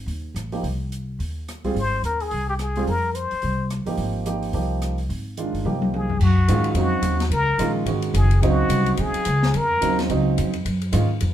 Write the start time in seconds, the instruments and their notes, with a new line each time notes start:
0.06 upright bass D#2, open hi-hat
0.34 upright bass A1, cross-stick, closed hi-hat
0.52 grand piano F3 A#3 D#4 G4, open hi-hat
0.63 upright bass C2, open hi-hat
0.92 closed hi-hat
1.19 upright bass D#2, open hi-hat
1.48 cross-stick, closed hi-hat
1.64 grand piano G3 C4 F4 G#4, kick, open hi-hat
1.74 upright bass G#1, open hi-hat
1.80 muted trumpet C5
2.02 upright bass D#2, muted trumpet A#4, closed hi-hat
2.20 muted trumpet G#4, open hi-hat
2.31 upright bass C2, open hi-hat
2.50 muted trumpet G4
2.59 muted trumpet G#4, cross-stick, closed hi-hat
2.76 grand piano G3 C4 F4 G#4, open hi-hat
2.87 upright bass F2, muted trumpet A#4, open hi-hat
3.15 muted trumpet C5, closed hi-hat
3.31 muted upright bass stroke, open hi-hat
3.42 upright bass C2, open hi-hat
3.70 cross-stick, closed hi-hat
3.86 upright bass A1, grand piano F3 A#3 D#4 G4, open hi-hat
3.97 upright bass G#1, open hi-hat
4.26 grand piano F3 A#3 D#4 G4, closed hi-hat
4.43 open hi-hat
4.53 upright bass C2, grand piano F3 A#3 D#4 G4, open hi-hat
4.82 cross-stick, closed hi-hat
4.98 open hi-hat
5.09 upright bass G#1, open hi-hat
5.37 grand piano D#3 G#3 D4 F4, closed hi-hat
5.53 upright bass G1, open hi-hat
5.65 upright bass C2, grand piano F3 A#3 D#4 G4, high tom
5.82 high tom
5.94 muted trumpet G#4, high tom
6.10 floor tom
6.20 upright bass F#2, muted trumpet F#4, kick, crash
6.37 kick
6.48 upright bass G#2, grand piano D#3 G#3 C#4 F4, hi-hat pedal, ride
6.64 ride
6.74 upright bass F2, grand piano C#3 F#3 C4 D#4, ride
6.79 muted trumpet F#4
7.02 upright bass D#2, hi-hat pedal, ride
7.20 snare, ride
7.30 upright bass C#2, muted trumpet A#4, ride
7.58 upright bass A#1, grand piano D#3 G#3 C#4 F4, hi-hat pedal, ride
7.86 upright bass G#1, grand piano D#3 G#3 C#4 F#4, ride
8.02 ride
8.14 upright bass F#1, muted trumpet G#4, hi-hat pedal, ride
8.31 ride
8.41 upright bass C#2, grand piano C#3 F#3 C4 D#4, ride
8.45 muted trumpet F#4
8.69 upright bass C2, hi-hat pedal, ride
8.86 ride
8.97 upright bass A#1, muted trumpet G#4, ride
9.14 muted upright bass stroke, ride
9.25 upright bass C#2, hi-hat pedal, ride
9.43 snare
9.54 upright bass F2, muted trumpet A#4, ride
9.81 upright bass D#2, grand piano C#3 F#3 C4 D#4, hi-hat pedal, ride
9.99 snare, ride
10.09 upright bass C#2, grand piano C#3 F#3 C4 D#4, ride
10.38 upright bass F2, hi-hat pedal, ride
10.53 ride
10.65 upright bass F#2, ride
10.82 ride
10.93 upright bass G#2, grand piano D#3 G#3 C#4 F4, hi-hat pedal, ride
11.21 upright bass F2, ride